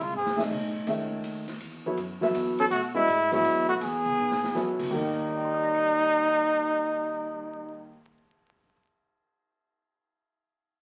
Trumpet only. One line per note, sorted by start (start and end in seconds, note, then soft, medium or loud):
0.03 0.14 F4 medium
0.16 0.43 G#4 medium
2.60 2.65 A4 loud
2.71 2.82 F#4 medium
2.95 3.29 E4 medium
3.33 3.67 E4 medium
3.69 3.75 F#4 medium
3.82 4.76 G#4 medium
4.94 7.90 D#4 medium